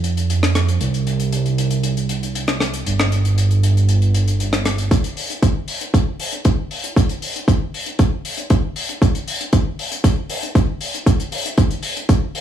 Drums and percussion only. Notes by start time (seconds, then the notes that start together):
0.04 closed hi-hat
0.17 closed hi-hat
0.30 closed hi-hat
0.43 cross-stick, closed hi-hat
0.55 cross-stick, closed hi-hat
0.68 closed hi-hat
0.81 closed hi-hat
0.94 closed hi-hat
1.07 closed hi-hat
1.20 closed hi-hat
1.32 closed hi-hat
1.46 closed hi-hat
1.58 closed hi-hat
1.71 closed hi-hat
1.83 closed hi-hat
1.97 closed hi-hat
2.09 closed hi-hat
2.23 closed hi-hat
2.35 closed hi-hat
2.48 cross-stick, closed hi-hat
2.60 cross-stick, closed hi-hat
2.74 closed hi-hat
2.86 closed hi-hat
2.99 cross-stick, closed hi-hat
3.12 closed hi-hat
3.25 closed hi-hat
3.38 closed hi-hat
3.51 closed hi-hat
3.63 closed hi-hat
3.77 closed hi-hat
3.89 closed hi-hat
4.02 closed hi-hat
4.14 closed hi-hat
4.28 closed hi-hat
4.40 closed hi-hat
4.53 cross-stick, closed hi-hat
4.65 cross-stick, closed hi-hat
4.78 closed hi-hat
4.91 kick, closed hi-hat
5.04 closed hi-hat
5.17 open hi-hat
5.30 closed hi-hat
5.43 kick, closed hi-hat
5.68 open hi-hat
5.81 closed hi-hat
5.94 kick, closed hi-hat
6.20 open hi-hat
6.32 closed hi-hat
6.45 kick, closed hi-hat
6.71 open hi-hat
6.84 closed hi-hat
6.96 kick, closed hi-hat
7.09 closed hi-hat
7.22 open hi-hat
7.36 closed hi-hat
7.48 kick, closed hi-hat
7.74 open hi-hat
7.86 closed hi-hat
7.99 kick, closed hi-hat
8.25 open hi-hat
8.37 closed hi-hat
8.50 kick, closed hi-hat
8.76 open hi-hat
8.89 closed hi-hat
9.02 kick, closed hi-hat
9.15 closed hi-hat
9.28 open hi-hat
9.41 closed hi-hat
9.53 kick, closed hi-hat
9.79 open hi-hat
9.92 closed hi-hat
10.04 kick, closed hi-hat
10.29 open hi-hat
10.43 closed hi-hat
10.55 kick, closed hi-hat
10.81 open hi-hat
10.95 closed hi-hat
11.06 kick, closed hi-hat
11.20 closed hi-hat
11.32 open hi-hat
11.46 closed hi-hat
11.58 kick, closed hi-hat
11.71 closed hi-hat
11.83 open hi-hat
11.97 closed hi-hat
12.09 kick, closed hi-hat
12.35 open hi-hat